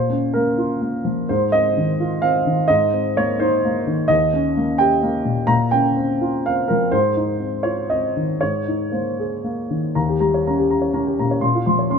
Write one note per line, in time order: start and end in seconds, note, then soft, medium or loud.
0.00 1.26 A#2 soft
0.00 0.34 C5 medium
0.10 0.49 C#4 soft
0.34 0.74 A#3 soft
0.34 0.82 A#4 medium
0.58 0.97 F4 soft
0.82 1.20 A#3 soft
1.05 1.29 F3 soft
1.29 2.66 G#2 soft
1.29 1.53 C5 medium
1.52 1.91 C4 soft
1.52 2.22 D#5 medium
1.77 2.14 D#3 soft
2.00 2.37 F4 soft
2.22 2.60 C4 soft
2.22 2.69 F5 medium
2.46 2.70 D#3 soft
2.68 4.06 G#2 medium
2.68 3.16 D#5 medium
2.93 3.31 C4 soft
3.17 3.55 A#3 soft
3.17 3.40 C#5 medium
3.39 3.78 D#4 soft
3.39 4.10 C5 medium
3.65 4.01 A#3 soft
3.87 4.10 D#3 soft
4.08 5.46 D#2 medium
4.08 4.79 D#5 medium
4.33 4.71 C#4 soft
4.57 4.94 A#3 soft
4.78 5.17 G4 soft
4.78 5.49 G5 medium
5.03 5.40 A#3 soft
5.25 5.46 A#2 soft
5.47 6.87 A#2 soft
5.47 5.72 A#5 medium
5.71 6.11 C#4 soft
5.71 6.44 G5 medium
5.97 6.35 C4 soft
6.21 6.59 F4 soft
6.46 6.84 C4 soft
6.46 6.69 F5 medium
6.68 6.93 F3 soft
6.68 6.92 A#4 medium
6.92 8.36 G#2 soft
6.92 7.64 C5 medium
7.17 7.55 D#4 soft
7.40 7.79 C4 soft
7.63 8.05 F4 soft
7.63 7.89 C#5 medium
7.90 8.31 C4 soft
7.90 8.40 D#5 medium
8.17 8.41 D#3 soft
8.41 9.92 G#2 soft
8.41 8.93 C#5 medium
8.68 9.09 D#4 soft
8.92 9.34 A#3 soft
8.92 9.69 C5 soft
9.19 9.60 G#4 soft
9.44 9.85 A#3 soft
9.70 9.95 D#3 soft
9.95 11.39 D#2 medium
9.95 10.15 A#5 soft
10.09 10.28 G4 soft
10.20 10.60 G3 soft
10.20 10.40 A#5 soft
10.34 10.53 C#5 soft
10.47 10.86 C#4 soft
10.47 10.66 A#5 soft
10.59 10.78 G4 soft
10.70 10.90 A#5 soft
10.82 11.01 C#5 soft
10.94 11.32 C#4 soft
10.94 11.13 A#5 soft
11.07 11.26 G4 soft
11.19 11.40 A#2 soft
11.19 11.38 A#5 soft
11.31 11.43 C#5 soft
11.41 11.99 A#2 soft
11.41 11.61 C6 soft
11.55 11.74 F4 soft
11.66 11.99 F3 soft
11.66 11.85 C6 soft
11.79 11.98 C#5 soft
11.90 11.99 C#4 soft
11.90 11.99 C6 soft